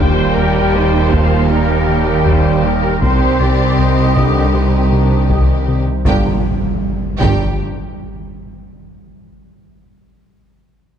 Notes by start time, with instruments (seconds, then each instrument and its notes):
Already playing: cello section D#2, synth drone G3 A#4 G5, violin section A#3 G4, trombone section A#3
0.00 sub bass D#1, analog synth bass D#2, double bass section D#2, trombone section D#3, synth drone D#3, french horn section G3, viola section C5, violin section G5
0.36 analog synth bass D#2, viola section A#4
0.74 analog synth bass D#2, viola section C5
1.12 analog synth bass D#2, french horn section F3, violin section F5, taiko
1.50 analog synth bass D#3, french horn section G3, viola section A#4, violin section G5
1.89 analog synth bass D#3
2.26 analog synth bass D#2, viola section C5, taiko
2.65 analog synth bass D#3, viola section A#4
3.01 analog synth bass C2, cello section C2, sub bass C2, double bass section C2, trombone section G3, synth drone G3 C5 G5, french horn section C4, violin section C4 G4 C6, viola section C5, taiko
3.40 analog synth bass C2, viola section D5
3.78 analog synth bass C2, viola section D#5
4.16 analog synth bass C2, french horn section D3, violin section D6, taiko
4.54 analog synth bass C3, french horn section D#3, viola section C5, violin section D#6
4.91 analog synth bass C3, viola section D4
5.29 analog synth bass C2, viola section D#5, taiko
5.68 analog synth bass C3
6.05 sub bass G1, double bass section G1, cello section G2, trombone section D3 F3, viola section F3 D4, french horn section A#3, violin section G4 G5 A#5, taiko, impact
7.19 sub bass G1, double bass section G1, cello section G2, viola section F3 D4, violin section G4 G5 A#5, taiko